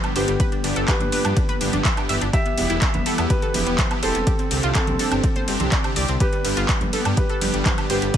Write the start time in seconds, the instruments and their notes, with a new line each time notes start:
Already playing: analog synth pad D3 G3 B3
0.04 supersaw synth G2 B3 D4 G4, synth arpeggio sound G3, closed hi-hat, high woodblock
0.16 detuned saw bass G1, supersaw synth G2 B3 D4 G4, grand piano B3 G4, synth arpeggio sound C5, open hi-hat, ride
0.28 detuned saw bass G1, synth arpeggio sound G3, closed hi-hat
0.40 analog synth pad F3, synth arpeggio sound B4, kick, closed hi-hat, ride
0.52 synth arpeggio sound D4, closed hi-hat
0.64 detuned saw bass G1, supersaw synth G2 B3 D4 G4, synth arpeggio sound D4, open hi-hat, ride
0.76 detuned saw bass G1, synth arpeggio sound A4, closed hi-hat
0.88 synth arpeggio sound D4, grand piano G4 B4, kick, clap, closed hi-hat, ride
1.00 detuned saw bass G1, synth arpeggio sound D4, closed hi-hat, high conga, low conga
1.12 supersaw synth G2 B3 D4 G4, synth arpeggio sound B4, open hi-hat, ride
1.25 supersaw synth G2 B3 D4 G4, detuned saw bass G2, synth arpeggio sound D4, closed hi-hat, high woodblock
1.37 synth arpeggio sound D4, kick, closed hi-hat, ride
1.49 synth arpeggio sound B4, closed hi-hat, high conga
1.61 detuned saw bass G1, supersaw synth G2 B3 D4 G4, synth arpeggio sound D4, open hi-hat, ride
1.73 detuned saw bass G1, synth arpeggio sound D4, closed hi-hat, low conga
1.85 synth arpeggio sound E5, kick, clap, closed hi-hat, ride
1.97 supersaw synth G2 B3 D4 G4, synth arpeggio sound D4, closed hi-hat, high woodblock
2.09 detuned saw bass G1, supersaw synth E3 B3 D4 G4, synth arpeggio sound E5, open hi-hat, ride
2.21 detuned saw bass G1, synth arpeggio sound D4, closed hi-hat
2.33 analog synth pad E3 G3 B3, synth arpeggio sound G4, grand piano G4 E5, kick, closed hi-hat, ride
2.46 synth arpeggio sound B3, closed hi-hat
2.58 detuned saw bass E1, supersaw synth E3 B3 E4 G4, synth arpeggio sound B3, open hi-hat, ride
2.70 detuned saw bass E1, synth arpeggio sound E4, closed hi-hat
2.81 synth arpeggio sound B3, kick, clap, closed hi-hat, ride
2.94 detuned saw bass E1, synth arpeggio sound B3, closed hi-hat, high conga, low conga
3.06 supersaw synth E3 B3 E4 G4, synth arpeggio sound A4, open hi-hat, ride
3.18 detuned saw bass E2, supersaw synth E3 B3 E4 G4, synth arpeggio sound B3, closed hi-hat, high woodblock
3.30 synth arpeggio sound B3, grand piano G4 B4, kick, closed hi-hat, ride
3.42 synth arpeggio sound A4, closed hi-hat
3.54 detuned saw bass E1, supersaw synth E3 B3 E4 G4, synth arpeggio sound B3, open hi-hat, ride, low conga
3.67 detuned saw bass E1, synth arpeggio sound B3, closed hi-hat
3.78 synth arpeggio sound C5, kick, clap, closed hi-hat, ride, low conga
3.91 supersaw synth E3 B3 E4 G4, synth arpeggio sound B3, closed hi-hat, high woodblock
4.03 detuned saw bass E1, supersaw synth B3 E4 G4, grand piano C4 A4, synth arpeggio sound C5, open hi-hat, ride
4.15 detuned saw bass E1, synth arpeggio sound B3, closed hi-hat
4.27 analog synth pad D3 G3 C4, synth arpeggio sound G4, kick, closed hi-hat, ride
4.39 synth arpeggio sound C4, closed hi-hat
4.51 detuned saw bass C2, supersaw synth C3 C4 D4 G4, synth arpeggio sound C4, open hi-hat, ride
4.63 detuned saw bass C2, synth arpeggio sound F4, closed hi-hat
4.75 grand piano C4 A4, synth arpeggio sound C4, kick, clap, closed hi-hat, ride
4.87 detuned saw bass C2, synth arpeggio sound C4, closed hi-hat, high conga, low conga
4.99 supersaw synth C3 C4 D4 G4, synth arpeggio sound A4, open hi-hat, ride
5.12 detuned saw bass G1, supersaw synth C3 C4 D4 G4, synth arpeggio sound C4, closed hi-hat, high woodblock
5.24 synth arpeggio sound C4, kick, closed hi-hat, ride
5.36 synth arpeggio sound C5, closed hi-hat, high conga
5.48 detuned saw bass G1, supersaw synth C3 C4 D4 G4, synth arpeggio sound C4, open hi-hat, ride
5.60 detuned saw bass C2, synth arpeggio sound C4, closed hi-hat, low conga
5.72 synth arpeggio sound D5, kick, clap, closed hi-hat, ride
5.84 supersaw synth C3 C4 D4 G4, synth arpeggio sound C4, closed hi-hat, high woodblock
5.96 detuned saw bass C2, supersaw synth C4 D4 G4, synth arpeggio sound D5, open hi-hat, ride
6.08 detuned saw bass C2, synth arpeggio sound C4, closed hi-hat
6.20 analog synth pad D3 G3 B3, synth arpeggio sound G4, grand piano G4 B4, kick, closed hi-hat, ride
6.33 synth arpeggio sound G3, closed hi-hat
6.45 detuned saw bass G1, supersaw synth G2 B3 D4 G4, synth arpeggio sound G3, open hi-hat, ride
6.57 detuned saw bass G1, synth arpeggio sound F4, closed hi-hat
6.69 synth arpeggio sound G3, kick, clap, closed hi-hat, ride
6.81 detuned saw bass G1, synth arpeggio sound G3, closed hi-hat, high conga, low conga
6.93 supersaw synth G2 B3 D4 G4, synth arpeggio sound A4, open hi-hat, ride
7.05 detuned saw bass G2, supersaw synth G2 B3 D4 G4, synth arpeggio sound G3, closed hi-hat, high woodblock
7.17 synth arpeggio sound G3, grand piano G4 B4, kick, closed hi-hat, ride
7.29 synth arpeggio sound A4, closed hi-hat
7.41 detuned saw bass G1, supersaw synth G2 B3 D4 G4, synth arpeggio sound G3, open hi-hat, ride, low conga
7.54 detuned saw bass G1, synth arpeggio sound G3, closed hi-hat
7.65 synth arpeggio sound C5, kick, clap, closed hi-hat, ride, low conga
7.78 supersaw synth G2 B3 D4 G4, synth arpeggio sound G3, closed hi-hat, high woodblock
7.90 detuned saw bass G1, supersaw synth G2 B3 D4 G4, grand piano B3 G4, synth arpeggio sound C5, open hi-hat, ride
8.02 detuned saw bass G1, synth arpeggio sound G3, closed hi-hat
8.14 synth arpeggio sound B4, kick, closed hi-hat, ride